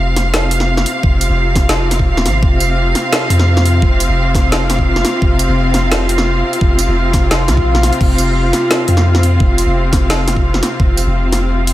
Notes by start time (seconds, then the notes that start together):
Already playing: F1 C3 C4 F4 F5
0.16 snare, closed hi-hat
0.34 snare
0.51 closed hi-hat
0.60 snare
0.77 snare
0.86 closed hi-hat
1.03 F1, kick
1.21 closed hi-hat, tambourine
1.30 F1
1.56 kick, snare, closed hi-hat
1.69 snare
1.91 snare, closed hi-hat
1.99 kick
2.08 D#1
2.17 snare
2.25 G#1, snare, closed hi-hat
2.43 F1, kick
2.60 closed hi-hat, tambourine
2.95 snare, closed hi-hat
3.13 snare
3.30 F2, closed hi-hat
3.40 snare
3.57 snare
3.66 closed hi-hat
3.82 F1, kick
4.00 closed hi-hat, tambourine
4.09 F1
4.35 kick, snare, closed hi-hat
4.52 snare
4.70 snare, closed hi-hat
4.79 kick
4.96 snare
5.05 snare, closed hi-hat
5.22 F1, kick
5.39 closed hi-hat, tambourine
5.49 F1
5.74 snare, closed hi-hat
5.92 snare
6.09 closed hi-hat
6.18 snare
6.53 closed hi-hat
6.61 F1, kick
6.79 closed hi-hat, tambourine
6.88 F1
7.13 kick, snare, closed hi-hat
7.31 snare, swell
7.48 C2, snare, closed hi-hat
7.57 A#1, kick
7.75 snare
7.83 snare, closed hi-hat
7.93 closed hi-hat
8.01 F1, kick, crash
8.18 closed hi-hat, tambourine
8.53 snare, closed hi-hat
8.71 snare
8.88 F2, closed hi-hat
8.97 snare
9.15 snare
9.23 closed hi-hat
9.40 F1, kick
9.58 closed hi-hat, tambourine
9.67 F1
9.93 kick, snare, closed hi-hat
10.10 snare
10.28 snare, closed hi-hat
10.36 kick
10.54 snare
10.63 snare, closed hi-hat
10.80 F1, kick
10.97 closed hi-hat, tambourine
11.06 F1
11.32 snare, closed hi-hat
11.67 closed hi-hat